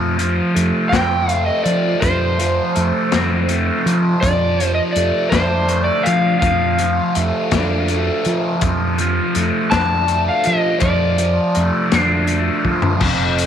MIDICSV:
0, 0, Header, 1, 5, 480
1, 0, Start_track
1, 0, Tempo, 732601
1, 1331, Time_signature, 6, 3, 24, 8
1, 8821, End_track
2, 0, Start_track
2, 0, Title_t, "Electric slide guitar"
2, 0, Program_c, 0, 29
2, 585, Note_on_c, 0, 79, 96
2, 860, Note_off_c, 0, 79, 0
2, 860, Note_on_c, 0, 77, 96
2, 931, Note_off_c, 0, 77, 0
2, 957, Note_on_c, 0, 75, 94
2, 1071, Note_off_c, 0, 75, 0
2, 1074, Note_on_c, 0, 74, 91
2, 1312, Note_on_c, 0, 72, 76
2, 1330, Note_off_c, 0, 74, 0
2, 2497, Note_off_c, 0, 72, 0
2, 2758, Note_on_c, 0, 74, 87
2, 3107, Note_off_c, 0, 74, 0
2, 3109, Note_on_c, 0, 75, 93
2, 3145, Note_off_c, 0, 75, 0
2, 3227, Note_on_c, 0, 74, 68
2, 3470, Note_on_c, 0, 72, 91
2, 3488, Note_off_c, 0, 74, 0
2, 3826, Note_off_c, 0, 72, 0
2, 3828, Note_on_c, 0, 74, 88
2, 3954, Note_on_c, 0, 77, 95
2, 3965, Note_off_c, 0, 74, 0
2, 4183, Note_off_c, 0, 77, 0
2, 4191, Note_on_c, 0, 77, 85
2, 5375, Note_off_c, 0, 77, 0
2, 6360, Note_on_c, 0, 81, 94
2, 6699, Note_off_c, 0, 81, 0
2, 6741, Note_on_c, 0, 77, 95
2, 6852, Note_on_c, 0, 75, 87
2, 6859, Note_off_c, 0, 77, 0
2, 7074, Note_off_c, 0, 75, 0
2, 7079, Note_on_c, 0, 74, 79
2, 7852, Note_off_c, 0, 74, 0
2, 7852, Note_on_c, 0, 72, 79
2, 8255, Note_off_c, 0, 72, 0
2, 8821, End_track
3, 0, Start_track
3, 0, Title_t, "Distorted electric guitar"
3, 0, Program_c, 1, 30
3, 0, Note_on_c, 1, 53, 70
3, 0, Note_on_c, 1, 57, 58
3, 0, Note_on_c, 1, 60, 65
3, 120, Note_off_c, 1, 53, 0
3, 123, Note_on_c, 1, 53, 62
3, 353, Note_off_c, 1, 57, 0
3, 356, Note_on_c, 1, 57, 61
3, 607, Note_off_c, 1, 60, 0
3, 610, Note_on_c, 1, 60, 70
3, 837, Note_off_c, 1, 57, 0
3, 840, Note_on_c, 1, 57, 70
3, 1081, Note_off_c, 1, 53, 0
3, 1084, Note_on_c, 1, 53, 72
3, 1328, Note_off_c, 1, 53, 0
3, 1331, Note_on_c, 1, 53, 68
3, 1563, Note_off_c, 1, 53, 0
3, 1566, Note_on_c, 1, 53, 59
3, 1802, Note_off_c, 1, 57, 0
3, 1805, Note_on_c, 1, 57, 59
3, 1811, Note_off_c, 1, 60, 0
3, 2045, Note_on_c, 1, 60, 65
3, 2283, Note_off_c, 1, 57, 0
3, 2285, Note_on_c, 1, 57, 63
3, 2526, Note_off_c, 1, 53, 0
3, 2529, Note_on_c, 1, 53, 64
3, 2768, Note_off_c, 1, 53, 0
3, 2769, Note_off_c, 1, 60, 0
3, 2770, Note_on_c, 1, 53, 72
3, 3018, Note_off_c, 1, 53, 0
3, 3021, Note_on_c, 1, 53, 65
3, 3250, Note_off_c, 1, 57, 0
3, 3253, Note_on_c, 1, 57, 64
3, 3488, Note_on_c, 1, 62, 71
3, 3724, Note_off_c, 1, 57, 0
3, 3726, Note_on_c, 1, 57, 66
3, 3974, Note_off_c, 1, 53, 0
3, 3977, Note_on_c, 1, 53, 67
3, 4215, Note_off_c, 1, 53, 0
3, 4218, Note_on_c, 1, 53, 69
3, 4455, Note_off_c, 1, 53, 0
3, 4458, Note_on_c, 1, 53, 61
3, 4688, Note_off_c, 1, 57, 0
3, 4690, Note_on_c, 1, 57, 65
3, 4941, Note_off_c, 1, 62, 0
3, 4944, Note_on_c, 1, 62, 66
3, 5181, Note_off_c, 1, 57, 0
3, 5184, Note_on_c, 1, 57, 67
3, 5419, Note_off_c, 1, 53, 0
3, 5422, Note_on_c, 1, 53, 68
3, 5650, Note_off_c, 1, 53, 0
3, 5652, Note_on_c, 1, 53, 66
3, 5890, Note_off_c, 1, 53, 0
3, 5892, Note_on_c, 1, 53, 66
3, 6126, Note_off_c, 1, 57, 0
3, 6129, Note_on_c, 1, 57, 63
3, 6364, Note_off_c, 1, 62, 0
3, 6367, Note_on_c, 1, 62, 70
3, 6593, Note_off_c, 1, 57, 0
3, 6601, Note_on_c, 1, 57, 61
3, 6841, Note_off_c, 1, 53, 0
3, 6844, Note_on_c, 1, 53, 71
3, 7075, Note_off_c, 1, 53, 0
3, 7083, Note_on_c, 1, 53, 67
3, 7319, Note_off_c, 1, 53, 0
3, 7327, Note_on_c, 1, 53, 63
3, 7562, Note_off_c, 1, 57, 0
3, 7566, Note_off_c, 1, 62, 0
3, 7570, Note_on_c, 1, 57, 66
3, 7811, Note_on_c, 1, 62, 69
3, 8029, Note_off_c, 1, 57, 0
3, 8037, Note_on_c, 1, 57, 61
3, 8278, Note_off_c, 1, 53, 0
3, 8286, Note_on_c, 1, 53, 66
3, 8521, Note_off_c, 1, 57, 0
3, 8521, Note_on_c, 1, 41, 106
3, 8526, Note_off_c, 1, 53, 0
3, 8528, Note_off_c, 1, 62, 0
3, 8821, Note_off_c, 1, 41, 0
3, 8821, End_track
4, 0, Start_track
4, 0, Title_t, "Fingered electric bass"
4, 0, Program_c, 2, 33
4, 0, Note_on_c, 2, 41, 106
4, 258, Note_off_c, 2, 41, 0
4, 369, Note_on_c, 2, 41, 91
4, 462, Note_off_c, 2, 41, 0
4, 607, Note_on_c, 2, 41, 102
4, 978, Note_off_c, 2, 41, 0
4, 1085, Note_on_c, 2, 53, 78
4, 1272, Note_off_c, 2, 53, 0
4, 1328, Note_on_c, 2, 41, 93
4, 1699, Note_off_c, 2, 41, 0
4, 1813, Note_on_c, 2, 41, 93
4, 1905, Note_off_c, 2, 41, 0
4, 2053, Note_on_c, 2, 41, 96
4, 2422, Note_off_c, 2, 41, 0
4, 2528, Note_on_c, 2, 53, 82
4, 2715, Note_off_c, 2, 53, 0
4, 2771, Note_on_c, 2, 41, 101
4, 3141, Note_off_c, 2, 41, 0
4, 3251, Note_on_c, 2, 41, 83
4, 3344, Note_off_c, 2, 41, 0
4, 3488, Note_on_c, 2, 41, 86
4, 3860, Note_off_c, 2, 41, 0
4, 3976, Note_on_c, 2, 53, 83
4, 4160, Note_off_c, 2, 53, 0
4, 4208, Note_on_c, 2, 41, 94
4, 4579, Note_off_c, 2, 41, 0
4, 4695, Note_on_c, 2, 41, 93
4, 4786, Note_off_c, 2, 41, 0
4, 4931, Note_on_c, 2, 41, 84
4, 5301, Note_off_c, 2, 41, 0
4, 5412, Note_on_c, 2, 53, 79
4, 5597, Note_off_c, 2, 53, 0
4, 5651, Note_on_c, 2, 41, 104
4, 6020, Note_off_c, 2, 41, 0
4, 6132, Note_on_c, 2, 41, 97
4, 6224, Note_off_c, 2, 41, 0
4, 6369, Note_on_c, 2, 41, 87
4, 6739, Note_off_c, 2, 41, 0
4, 6860, Note_on_c, 2, 53, 82
4, 7041, Note_off_c, 2, 53, 0
4, 7087, Note_on_c, 2, 41, 107
4, 7457, Note_off_c, 2, 41, 0
4, 7577, Note_on_c, 2, 41, 92
4, 7666, Note_off_c, 2, 41, 0
4, 7814, Note_on_c, 2, 41, 85
4, 8180, Note_off_c, 2, 41, 0
4, 8287, Note_on_c, 2, 53, 80
4, 8471, Note_off_c, 2, 53, 0
4, 8530, Note_on_c, 2, 29, 89
4, 8821, Note_off_c, 2, 29, 0
4, 8821, End_track
5, 0, Start_track
5, 0, Title_t, "Drums"
5, 124, Note_on_c, 9, 42, 61
5, 190, Note_off_c, 9, 42, 0
5, 369, Note_on_c, 9, 42, 62
5, 435, Note_off_c, 9, 42, 0
5, 606, Note_on_c, 9, 36, 70
5, 609, Note_on_c, 9, 42, 83
5, 612, Note_on_c, 9, 38, 104
5, 672, Note_off_c, 9, 36, 0
5, 675, Note_off_c, 9, 42, 0
5, 678, Note_off_c, 9, 38, 0
5, 845, Note_on_c, 9, 42, 55
5, 910, Note_off_c, 9, 42, 0
5, 1085, Note_on_c, 9, 42, 56
5, 1150, Note_off_c, 9, 42, 0
5, 1325, Note_on_c, 9, 36, 104
5, 1326, Note_on_c, 9, 42, 77
5, 1391, Note_off_c, 9, 36, 0
5, 1391, Note_off_c, 9, 42, 0
5, 1569, Note_on_c, 9, 42, 59
5, 1635, Note_off_c, 9, 42, 0
5, 1806, Note_on_c, 9, 42, 57
5, 1871, Note_off_c, 9, 42, 0
5, 2044, Note_on_c, 9, 42, 71
5, 2047, Note_on_c, 9, 38, 101
5, 2109, Note_off_c, 9, 42, 0
5, 2112, Note_off_c, 9, 38, 0
5, 2285, Note_on_c, 9, 42, 57
5, 2350, Note_off_c, 9, 42, 0
5, 2534, Note_on_c, 9, 42, 54
5, 2599, Note_off_c, 9, 42, 0
5, 2769, Note_on_c, 9, 36, 108
5, 2773, Note_on_c, 9, 42, 77
5, 2835, Note_off_c, 9, 36, 0
5, 2839, Note_off_c, 9, 42, 0
5, 3015, Note_on_c, 9, 42, 61
5, 3081, Note_off_c, 9, 42, 0
5, 3248, Note_on_c, 9, 42, 61
5, 3313, Note_off_c, 9, 42, 0
5, 3486, Note_on_c, 9, 36, 70
5, 3486, Note_on_c, 9, 42, 81
5, 3489, Note_on_c, 9, 38, 97
5, 3551, Note_off_c, 9, 36, 0
5, 3552, Note_off_c, 9, 42, 0
5, 3554, Note_off_c, 9, 38, 0
5, 3726, Note_on_c, 9, 42, 61
5, 3791, Note_off_c, 9, 42, 0
5, 3969, Note_on_c, 9, 42, 56
5, 4035, Note_off_c, 9, 42, 0
5, 4207, Note_on_c, 9, 42, 83
5, 4208, Note_on_c, 9, 36, 114
5, 4273, Note_off_c, 9, 36, 0
5, 4273, Note_off_c, 9, 42, 0
5, 4446, Note_on_c, 9, 42, 60
5, 4511, Note_off_c, 9, 42, 0
5, 4686, Note_on_c, 9, 42, 64
5, 4752, Note_off_c, 9, 42, 0
5, 4924, Note_on_c, 9, 42, 78
5, 4926, Note_on_c, 9, 36, 72
5, 4927, Note_on_c, 9, 38, 98
5, 4989, Note_off_c, 9, 42, 0
5, 4992, Note_off_c, 9, 36, 0
5, 4992, Note_off_c, 9, 38, 0
5, 5165, Note_on_c, 9, 42, 56
5, 5231, Note_off_c, 9, 42, 0
5, 5403, Note_on_c, 9, 42, 55
5, 5469, Note_off_c, 9, 42, 0
5, 5643, Note_on_c, 9, 42, 85
5, 5648, Note_on_c, 9, 36, 113
5, 5709, Note_off_c, 9, 42, 0
5, 5714, Note_off_c, 9, 36, 0
5, 5886, Note_on_c, 9, 42, 60
5, 5951, Note_off_c, 9, 42, 0
5, 6125, Note_on_c, 9, 42, 64
5, 6191, Note_off_c, 9, 42, 0
5, 6364, Note_on_c, 9, 42, 75
5, 6367, Note_on_c, 9, 36, 70
5, 6367, Note_on_c, 9, 38, 104
5, 6430, Note_off_c, 9, 42, 0
5, 6432, Note_off_c, 9, 38, 0
5, 6433, Note_off_c, 9, 36, 0
5, 6604, Note_on_c, 9, 42, 52
5, 6670, Note_off_c, 9, 42, 0
5, 6838, Note_on_c, 9, 42, 56
5, 6903, Note_off_c, 9, 42, 0
5, 7078, Note_on_c, 9, 42, 75
5, 7087, Note_on_c, 9, 36, 106
5, 7143, Note_off_c, 9, 42, 0
5, 7153, Note_off_c, 9, 36, 0
5, 7326, Note_on_c, 9, 42, 61
5, 7392, Note_off_c, 9, 42, 0
5, 7566, Note_on_c, 9, 42, 65
5, 7632, Note_off_c, 9, 42, 0
5, 7808, Note_on_c, 9, 42, 87
5, 7811, Note_on_c, 9, 38, 100
5, 7874, Note_off_c, 9, 42, 0
5, 7876, Note_off_c, 9, 38, 0
5, 8041, Note_on_c, 9, 42, 62
5, 8107, Note_off_c, 9, 42, 0
5, 8286, Note_on_c, 9, 36, 50
5, 8352, Note_off_c, 9, 36, 0
5, 8401, Note_on_c, 9, 43, 86
5, 8467, Note_off_c, 9, 43, 0
5, 8521, Note_on_c, 9, 49, 123
5, 8525, Note_on_c, 9, 36, 110
5, 8586, Note_off_c, 9, 49, 0
5, 8590, Note_off_c, 9, 36, 0
5, 8769, Note_on_c, 9, 42, 70
5, 8821, Note_off_c, 9, 42, 0
5, 8821, End_track
0, 0, End_of_file